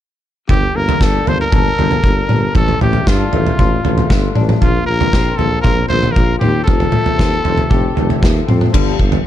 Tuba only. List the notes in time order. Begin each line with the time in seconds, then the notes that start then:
0.50 G1
0.75 G1
1.01 G1
1.27 G1
1.53 G1
1.78 G1
2.04 G1
2.31 G1
2.55 A1
2.82 A1
3.07 G2
3.33 A1
3.59 A1
3.85 A1
4.11 G1
4.37 A1
4.62 A#1
4.88 A#1
5.13 A#1
5.39 A#1
5.65 A#1
5.91 A#1
6.16 A#1
6.43 D#2
6.67 F1
7.19 D#2
7.46 F1
7.71 F1
7.99 F1
8.23 D#2
8.50 F2
8.74 G1
9.00 G1